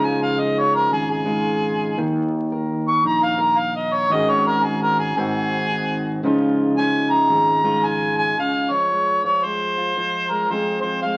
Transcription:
Already playing: fretless electric bass C#2, steel-string acoustic guitar C#3 F3 G#3 D#4 F4
0.04 harmonica G#5
0.23 harmonica F5
0.39 steel-string acoustic guitar D#4, harmonica D#5
0.59 harmonica C#5
0.75 harmonica A#4
0.92 fretless electric bass G#1, steel-string acoustic guitar G#3, harmonica G#4
1.11 harmonica G#4
1.25 steel-string acoustic guitar G#3 D#4 F4
1.98 fretless electric bass D#2, steel-string acoustic guitar D#3
2.52 steel-string acoustic guitar A#4
2.88 harmonica C#6
3.03 fretless electric bass A#1, steel-string acoustic guitar D#4, harmonica A#5
3.23 harmonica F5
3.38 steel-string acoustic guitar D#4 A#4, harmonica A#5
3.58 harmonica F5
3.76 harmonica D#5
3.94 harmonica C#5
4.10 fretless electric bass G#1, steel-string acoustic guitar G#2 D#3 C#4 F#4 G#4, harmonica D#5
4.30 harmonica C#5
4.47 harmonica A#4
4.63 steel-string acoustic guitar F#4, harmonica G#4
4.82 harmonica A#4
4.99 harmonica G#4
5.17 fretless electric bass G#1, steel-string acoustic guitar G#2 D#3 C4 F#4, harmonica G#4
5.71 steel-string acoustic guitar F#4
6.23 fretless electric bass C#2, steel-string acoustic guitar C#3 F3 G#3 D#4 F4
6.78 steel-string acoustic guitar D#4, harmonica G#5
7.10 harmonica A#5
7.30 fretless electric bass G#1, steel-string acoustic guitar G#3
7.64 steel-string acoustic guitar G#3 D#4 F4
7.86 harmonica G#5
8.18 harmonica G#5
8.38 steel-string acoustic guitar C#3, harmonica F5
8.70 steel-string acoustic guitar F3, harmonica C#5
8.91 steel-string acoustic guitar G#3
9.24 steel-string acoustic guitar F3, harmonica C#5
9.44 steel-string acoustic guitar G#3, harmonica C5
9.77 steel-string acoustic guitar F4
9.97 steel-string acoustic guitar F3
10.30 steel-string acoustic guitar G#3, harmonica A#4
10.50 steel-string acoustic guitar F2 F3 G#3 C4 G#4, harmonica C5
10.82 steel-string acoustic guitar F3, harmonica C5
11.02 steel-string acoustic guitar G#3, harmonica F5

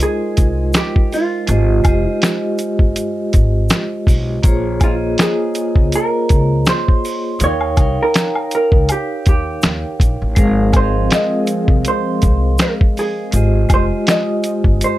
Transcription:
Already playing: vibraphone G#3 D#4 F4 A#4 C5 D#5
0.00 hollow-body jazz guitar G#4, closed hi-hat, shaker
0.37 upright bass C2, kick, closed hi-hat, shaker
0.73 hollow-body jazz guitar G4, finger snap, snare, closed hi-hat, shaker
0.96 kick
1.12 hollow-body jazz guitar F4, open hi-hat, shaker
1.47 upright bass G#1, vibraphone G#3 F4 G4 C5, closed hi-hat, shaker
1.51 vibraphone D#5
1.84 vibraphone G#3 F4 G4 C5, kick, closed hi-hat, high woodblock, shaker
1.88 vibraphone D#5
2.09 hollow-body jazz guitar D#4
2.22 finger snap, snare, closed hi-hat, shaker
2.58 closed hi-hat, shaker
2.79 upright bass G1, kick
2.96 closed hi-hat, shaker
3.33 upright bass G#1, kick, closed hi-hat, shaker
3.69 finger snap, snare, closed hi-hat, shaker
4.07 upright bass B1, kick, open hi-hat, shaker
4.43 upright bass A#1, vibraphone A#3 F4 G#4 C5, kick, closed hi-hat, shaker
4.47 vibraphone C#5
4.80 vibraphone A#3 F4 G#4 C5, hollow-body jazz guitar F4, kick, closed hi-hat, high woodblock, shaker
4.84 vibraphone D#5
5.18 hollow-body jazz guitar G#4, finger snap, snare, closed hi-hat, shaker
5.55 closed hi-hat, shaker
5.76 upright bass C#2, kick
5.92 hollow-body jazz guitar A#4, closed hi-hat, shaker
6.29 upright bass C#2, kick, closed hi-hat, shaker
6.66 hollow-body jazz guitar C5, finger snap, snare, closed hi-hat, shaker
6.88 kick
7.05 open hi-hat, shaker
7.39 upright bass D#2, vibraphone D#4 A#4 C#5 F5, closed hi-hat, shaker
7.43 hollow-body jazz guitar C#5, vibraphone G5
7.61 high woodblock
7.77 upright bass C2, vibraphone D#4 A#4 C#5 F5, kick, closed hi-hat, high woodblock, shaker
7.81 vibraphone G5
8.03 hollow-body jazz guitar A#4
8.14 finger snap, snare, closed hi-hat, shaker
8.36 high woodblock
8.51 hollow-body jazz guitar A#4, closed hi-hat, shaker
8.72 upright bass C#2, kick
8.89 hollow-body jazz guitar G4, closed hi-hat, high woodblock, shaker
9.26 upright bass D#2, hollow-body jazz guitar G4, kick, closed hi-hat, shaker
9.62 upright bass D#2, finger snap, snare, closed hi-hat, shaker
10.00 upright bass A#1, kick, closed hi-hat, shaker
10.22 upright bass A1
10.35 upright bass G#1, analog synth pad F3 G#3 C4, vibraphone G#3 G#4 A#4 C5, kick, closed hi-hat, shaker
10.40 vibraphone F5
10.72 vibraphone G#3 G#4 A#4 C5, kick, closed hi-hat, high woodblock, shaker
10.77 hollow-body jazz guitar C5, vibraphone D#5
10.83 vibraphone F5
11.11 hollow-body jazz guitar D#5, finger snap, snare, closed hi-hat, shaker
11.47 closed hi-hat, shaker
11.68 upright bass C2, kick
11.85 hollow-body jazz guitar C5, closed hi-hat, shaker
12.22 upright bass C2, kick, closed hi-hat, shaker
12.58 hollow-body jazz guitar A#4, finger snap, snare, closed hi-hat, shaker
12.81 kick
12.97 hollow-body jazz guitar G#4, open hi-hat, shaker
13.32 upright bass G#1, vibraphone G#3 F4 G4 C5, closed hi-hat, shaker
13.36 vibraphone D#5
13.69 upright bass F1, vibraphone G#3 F4 G4 C5, kick, closed hi-hat, high woodblock, shaker
13.73 hollow-body jazz guitar C5, vibraphone D#5
14.07 hollow-body jazz guitar D#5, finger snap, snare, closed hi-hat, shaker
14.44 closed hi-hat, shaker
14.64 upright bass G1, kick
14.81 hollow-body jazz guitar C5, closed hi-hat, shaker

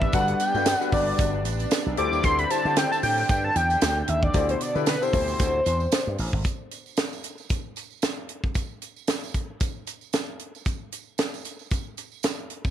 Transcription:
Already playing: analog synth pad G3 B3 D4, analog synth lead E5
0.02 kick
0.13 slap bass G1, grand piano D4 F#4 A4 B4, analog synth lead F#5, kick, closed hi-hat, tambourine
0.28 closed hi-hat
0.39 analog synth lead G5, closed hi-hat, tambourine
0.54 slap bass G2, grand piano D4 F#4 A4 B4, tambourine
0.66 snare, closed hi-hat, tambourine
0.76 analog synth lead F#5
0.80 grand piano D4 F#4 A4 B4, tambourine
0.92 slap bass G1, analog synth lead D5, kick, open hi-hat, tambourine
1.18 slap bass G1, kick, closed hi-hat, tambourine
1.45 slap bass A1, closed hi-hat, tambourine
1.59 closed hi-hat, tambourine
1.71 snare, closed hi-hat, tambourine
1.86 slap bass B1
1.97 slap bass D2, analog synth pad D3 C4, grand piano E4 G4 A4 C5, analog synth lead D6, closed hi-hat
2.12 slap bass D#2, tambourine
2.23 slap bass D2, analog synth lead C6, kick, closed hi-hat, tambourine
2.38 analog synth lead B5, closed hi-hat
2.50 grand piano E4 G4 A4 C5, analog synth lead A5, closed hi-hat, tambourine
2.65 slap bass D3, grand piano E4 G4 A4 C5, tambourine
2.76 analog synth lead G5, snare, closed hi-hat, tambourine
2.92 analog synth lead A5, tambourine
3.03 slap bass A2, analog synth lead G5, open hi-hat, tambourine
3.18 tambourine
3.29 slap bass G2, analog synth lead G5, kick, closed hi-hat, tambourine
3.45 analog synth lead A5
3.56 slap bass E2, analog synth lead G5, closed hi-hat, tambourine
3.70 closed hi-hat, tambourine
3.81 slap bass D2, snare, closed hi-hat, tambourine
4.08 slap bass D#2, analog synth pad B2, analog synth lead E5, closed hi-hat
4.23 analog synth lead D5, kick
4.34 slap bass D2, grand piano E4 G4 A4 C5, kick, closed hi-hat, tambourine
4.49 analog synth lead C5, closed hi-hat
4.61 analog synth lead D5, closed hi-hat, tambourine
4.75 slap bass D3, grand piano E4 G4 A4 B4, tambourine
4.86 analog synth lead B4, snare, closed hi-hat, tambourine
5.02 grand piano E4 G4 A4 C5, analog synth lead C5, tambourine
5.13 slap bass D2, kick, open hi-hat, tambourine
5.28 tambourine
5.39 slap bass D2, kick, closed hi-hat, tambourine
5.66 slap bass E2, closed hi-hat, tambourine
5.80 tambourine
5.92 snare, closed hi-hat, tambourine
6.07 slap bass G2
6.18 slap bass A1, open hi-hat
6.33 slap bass G#1, kick
6.44 kick, closed hi-hat, tambourine
6.71 closed hi-hat, tambourine
6.86 tambourine
6.97 snare, closed hi-hat, tambourine
7.13 tambourine
7.24 closed hi-hat, tambourine
7.38 tambourine
7.49 kick, closed hi-hat, tambourine
7.76 closed hi-hat, tambourine
7.90 tambourine
8.02 snare, closed hi-hat, tambourine
8.29 closed hi-hat
8.44 kick
8.54 kick, closed hi-hat, tambourine
8.82 closed hi-hat, tambourine
8.96 tambourine
9.07 snare, closed hi-hat, tambourine
9.24 tambourine
9.34 kick, closed hi-hat, tambourine
9.60 kick, closed hi-hat, tambourine
9.87 closed hi-hat, tambourine
10.01 tambourine
10.13 snare, closed hi-hat, tambourine
10.39 closed hi-hat
10.55 tambourine
10.65 kick, closed hi-hat, tambourine
10.92 closed hi-hat, tambourine
11.18 snare, closed hi-hat, tambourine
11.34 tambourine
11.45 closed hi-hat, tambourine
11.59 tambourine
11.71 kick, closed hi-hat, tambourine
11.97 closed hi-hat, tambourine
12.12 tambourine
12.23 snare, closed hi-hat, tambourine
12.50 closed hi-hat
12.65 kick, tambourine

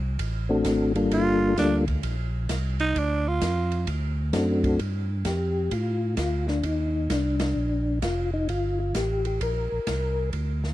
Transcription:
Already playing: tonewheel organ C2
0.19 tonewheel organ A1, kick, ride
0.49 tonewheel organ A3 C4 D4 F#4 A4
0.65 tonewheel organ G#1, kick, snare, hi-hat pedal, ride
0.95 tonewheel organ G3 A#3 D4 F4 A4, ride
1.11 tonewheel organ G1, tenor saxophone F4, kick, ride
1.57 tonewheel organ D2 G3 A#3 D4 F4 A4, tenor saxophone D4, kick, snare, hi-hat pedal, ride
1.88 kick, ride
2.03 tonewheel organ A#1, kick, ride
2.49 tonewheel organ C2, kick, snare, hi-hat pedal, ride
2.80 tenor saxophone D#4, ride
2.95 tonewheel organ D2, tenor saxophone D4, kick, ride
3.28 tenor saxophone F4
3.41 tonewheel organ F2, kick, snare, hi-hat pedal, ride
3.72 ride
3.87 tonewheel organ D2, kick, ride
4.33 tonewheel organ F#2 A3 C4 D4 F#4 A4, kick, snare, hi-hat pedal, ride
4.64 kick, ride
4.79 tonewheel organ G2, kick, ride
5.25 tonewheel organ F2 G4, kick, snare, hi-hat pedal, ride
5.71 tonewheel organ A2 F4, kick, ride
6.17 tonewheel organ D2 F4, kick, snare, hi-hat pedal, ride
6.48 tonewheel organ D4, snare
6.63 tonewheel organ D#2 D#4, kick, ride
7.10 tonewheel organ C2 D4, kick, snare, hi-hat pedal, ride
7.40 tonewheel organ D4, snare, ride
7.56 tonewheel organ A#1
8.02 tonewheel organ F1 F4, kick, snare, hi-hat pedal, ride
8.34 tonewheel organ D#4
8.48 tonewheel organ G1 F4, kick, ride
8.80 tonewheel organ F4
8.94 tonewheel organ A1 G4, kick, snare, hi-hat pedal, ride
9.25 tonewheel organ G4, ride
9.40 tonewheel organ A#1 A#4, kick, ride
9.72 tonewheel organ A#1
9.87 tonewheel organ C2, kick, snare, hi-hat pedal, ride
10.33 tonewheel organ D2, kick, ride
10.64 snare

